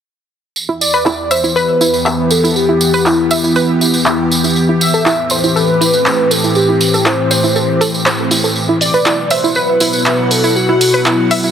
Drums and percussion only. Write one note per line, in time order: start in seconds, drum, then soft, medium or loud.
0.56 tambourine soft
0.81 open hi-hat loud
0.81 tambourine medium
0.94 tambourine soft
1.06 clap loud
1.06 tambourine soft
1.31 open hi-hat loud
1.31 tambourine medium
1.44 tambourine soft
1.57 tambourine soft
1.81 open hi-hat loud
1.81 tambourine medium
1.94 tambourine soft
2.06 clap loud
2.06 tambourine soft
2.31 open hi-hat loud
2.31 tambourine medium
2.45 tambourine medium
2.56 tambourine soft
2.81 open hi-hat loud
2.81 tambourine medium
2.93 tambourine medium
3.06 clap loud
3.06 tambourine soft
3.31 open hi-hat loud
3.31 tambourine loud
3.44 tambourine medium
3.56 tambourine soft
3.81 open hi-hat loud
3.81 tambourine medium
3.94 tambourine medium
4.06 clap loud
4.06 tambourine soft
4.31 open hi-hat loud
4.31 tambourine medium
4.44 tambourine medium
4.56 tambourine soft
4.81 open hi-hat loud
4.81 tambourine loud
4.94 tambourine medium
5.06 clap loud
5.06 tambourine soft
5.30 open hi-hat loud
5.30 tambourine medium
5.44 tambourine soft
5.56 tambourine soft
5.81 open hi-hat loud
5.81 tambourine medium
5.93 tambourine medium
6.06 clap loud
6.06 tambourine soft
6.31 open hi-hat loud
6.31 tambourine medium
6.44 tambourine soft
6.55 tambourine soft
6.81 open hi-hat loud
6.81 tambourine medium
6.94 tambourine medium
7.05 clap loud
7.05 tambourine soft
7.31 open hi-hat loud
7.31 tambourine medium
7.44 tambourine soft
7.56 tambourine soft
7.81 open hi-hat loud
7.81 tambourine medium
7.94 tambourine soft
8.06 clap loud
8.06 tambourine soft
8.31 open hi-hat loud
8.31 tambourine medium
8.44 tambourine medium
8.56 tambourine soft
8.81 open hi-hat loud
8.81 tambourine medium
8.94 tambourine soft
9.05 clap loud
9.05 tambourine soft
9.30 open hi-hat loud
9.30 tambourine medium
9.44 tambourine soft
9.55 tambourine soft
9.80 open hi-hat loud
9.80 tambourine medium
9.93 tambourine medium
10.06 clap loud
10.31 open hi-hat loud
10.31 tambourine medium
10.44 tambourine medium
10.56 tambourine soft
10.81 open hi-hat loud
10.81 tambourine medium
10.94 tambourine soft
11.06 clap loud
11.06 tambourine soft
11.31 open hi-hat loud
11.31 tambourine medium
11.43 tambourine soft